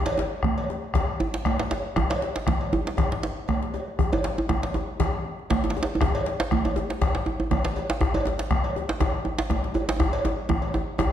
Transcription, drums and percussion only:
0.06 cowbell, djembe slap
0.18 djembe slap, djembe tone
0.43 bombo rim, bombo low, high conga, low conga
0.58 cowbell, djembe slap
0.70 djembe slap, djembe tone
0.83 bombo rim
0.94 bombo rim, bombo low, cowbell, djembe slap, low conga, djembe bass
1.09 bombo rim, djembe slap, high conga
1.20 djembe tone, high conga
1.34 djembe slap
1.45 bombo rim, bombo low, cowbell, high conga, low conga
1.59 djembe slap
1.71 cowbell, djembe slap, djembe tone, high conga
1.85 djembe slap, high conga
1.96 bombo rim, bombo low, djembe slap, djembe tone, djembe bass, low conga
2.10 bombo rim, cowbell, djembe slap, high conga
2.22 djembe slap, high conga
2.36 djembe slap, high conga
2.47 bombo rim, bombo low, djembe slap, high conga, low conga
2.61 bombo rim, cowbell
2.73 djembe tone
2.87 djembe slap, high conga
2.97 bombo rim, bombo low, cowbell, djembe slap, djembe bass, low conga
3.12 bombo rim, djembe slap
3.23 djembe slap, high conga
3.38 djembe slap
3.48 bombo rim, bombo low, cowbell, high conga, low conga
3.63 djembe slap
3.74 cowbell, djembe slap, djembe tone
3.88 high conga
3.99 bombo rim, bombo low, djembe bass, low conga
4.13 cowbell, djembe slap, djembe tone
4.24 djembe slap, high conga
4.38 djembe tone
4.49 bombo rim, bombo low, djembe slap, djembe tone, high conga, low conga
4.63 cowbell, djembe slap
4.74 djembe slap, djembe tone
4.89 bombo rim
5.00 bombo rim, bombo low, cowbell, djembe slap, djembe bass, low conga
5.14 bombo rim, high conga
5.26 high conga
5.39 djembe slap
5.50 bombo rim, bombo low, cowbell, djembe slap, high conga, low conga
5.64 djembe slap, djembe tone
5.70 djembe slap
5.75 cowbell, djembe slap, djembe tone
5.83 djembe slap
5.90 djembe slap, high conga
5.95 djembe tone
6.01 bombo rim, bombo low, djembe slap, djembe bass, low conga
6.15 cowbell, djembe slap
6.26 djembe slap, high conga
6.40 djembe slap
6.51 bombo rim, bombo low, high conga, djembe tone, low conga
6.65 cowbell, djembe tone
6.76 djembe slap, djembe tone
6.90 djembe slap
7.01 bombo rim, bombo low, cowbell, djembe slap, djembe bass, low conga
7.15 bombo rim, djembe slap, high conga
7.26 djembe tone, high conga
7.40 djembe slap, djembe tone
7.51 bombo rim, bombo low, cowbell, djembe tone, high conga, low conga
7.65 djembe slap
7.76 cowbell, djembe slap, high conga, djembe tone
7.90 djembe slap
8.01 bombo rim, bombo low, djembe tone, low conga, djembe bass
8.14 cowbell, djembe tone
8.26 djembe slap, djembe tone, high conga
8.39 djembe slap
8.51 bombo rim, bombo low, djembe slap, high conga, low conga
8.64 cowbell, djembe slap
8.76 djembe slap, djembe tone
8.89 bombo rim, djembe slap
9.00 bombo rim, bombo low, cowbell, djembe slap, djembe tone, low conga, djembe bass
9.14 bombo rim, djembe slap, high conga
9.25 djembe tone, high conga
9.38 djembe slap
9.50 bombo rim, bombo low, cowbell, djembe tone, high conga, low conga
9.64 djembe slap
9.74 cowbell, djembe slap, djembe tone, high conga
9.89 djembe slap, high conga
10.00 bombo rim, bombo low, djembe tone, low conga, djembe bass
10.13 cowbell
10.25 djembe slap, djembe tone
10.38 high conga
10.49 bombo rim, bombo low, djembe tone, high conga, low conga
10.62 cowbell, djembe slap
10.74 djembe tone, high conga
10.98 bombo rim, bombo low, cowbell, djembe slap, high conga, djembe tone, low conga, djembe bass

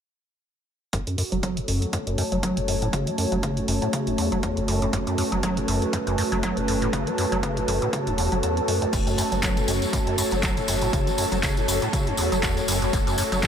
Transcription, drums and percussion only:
0.93 kick, closed hi-hat
1.07 closed hi-hat
1.18 open hi-hat
1.32 closed hi-hat
1.43 kick, closed hi-hat
1.57 closed hi-hat
1.68 open hi-hat
1.82 closed hi-hat
1.93 kick, closed hi-hat
2.07 closed hi-hat
2.18 open hi-hat
2.32 closed hi-hat
2.43 kick, closed hi-hat
2.57 closed hi-hat
2.68 open hi-hat
2.82 closed hi-hat
2.93 kick, closed hi-hat
3.07 closed hi-hat
3.18 open hi-hat
3.32 closed hi-hat
3.43 kick, closed hi-hat
3.57 closed hi-hat
3.68 open hi-hat
3.82 closed hi-hat
3.93 kick, closed hi-hat
4.07 closed hi-hat
4.18 open hi-hat
4.32 closed hi-hat
4.43 kick, closed hi-hat
4.57 closed hi-hat
4.68 open hi-hat
4.82 closed hi-hat
4.93 kick, closed hi-hat
5.07 closed hi-hat
5.18 open hi-hat
5.32 closed hi-hat
5.43 kick, closed hi-hat
5.57 closed hi-hat
5.68 open hi-hat
5.82 closed hi-hat
5.93 kick, closed hi-hat
6.07 closed hi-hat
6.18 open hi-hat
6.32 closed hi-hat
6.43 kick, closed hi-hat
6.57 closed hi-hat
6.68 open hi-hat
6.82 closed hi-hat
6.93 kick, closed hi-hat
7.07 closed hi-hat
7.18 open hi-hat
7.32 closed hi-hat
7.43 kick, closed hi-hat
7.57 closed hi-hat
7.68 open hi-hat
7.82 closed hi-hat
7.93 kick, closed hi-hat
8.07 closed hi-hat
8.18 open hi-hat
8.32 closed hi-hat
8.43 closed hi-hat
8.57 closed hi-hat
8.68 open hi-hat
8.82 closed hi-hat
8.93 kick, closed hi-hat, crash, tambourine
9.07 closed hi-hat, tambourine
9.18 open hi-hat, tambourine
9.32 closed hi-hat, tambourine
9.43 kick, clap, closed hi-hat, tambourine
9.57 closed hi-hat, tambourine
9.68 open hi-hat, tambourine
9.82 closed hi-hat, tambourine
9.93 kick, closed hi-hat, tambourine
10.07 closed hi-hat
10.18 open hi-hat, tambourine
10.31 closed hi-hat, tambourine
10.43 kick, clap, closed hi-hat, tambourine
10.57 closed hi-hat, tambourine
10.68 open hi-hat, tambourine
10.81 closed hi-hat, tambourine
10.93 kick, closed hi-hat, tambourine
11.07 closed hi-hat, tambourine
11.18 open hi-hat, tambourine
11.32 closed hi-hat, tambourine
11.43 kick, clap, closed hi-hat, tambourine
11.57 closed hi-hat, tambourine
11.68 open hi-hat, tambourine
11.82 closed hi-hat, tambourine
11.93 kick, closed hi-hat, tambourine
12.07 closed hi-hat
12.17 open hi-hat, tambourine
12.32 closed hi-hat, tambourine
12.43 kick, clap, closed hi-hat, tambourine
12.57 closed hi-hat, tambourine
12.68 open hi-hat, tambourine
12.82 closed hi-hat, tambourine
12.93 kick, closed hi-hat, tambourine
13.07 closed hi-hat, tambourine
13.18 open hi-hat, tambourine
13.32 closed hi-hat, tambourine
13.43 kick, clap, closed hi-hat, tambourine

